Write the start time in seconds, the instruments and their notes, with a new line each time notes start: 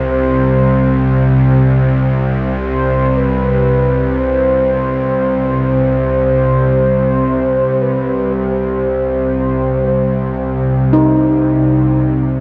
Already playing: synth drone C2 C3, kettle gongs F3
0.11 soft synth lead C5
2.65 soft synth lead C5
3.17 soft synth lead B4
4.18 soft synth lead C5
6.25 soft synth lead C5
7.81 soft synth lead B4
8.32 soft synth lead C5
10.93 kettle gongs D#4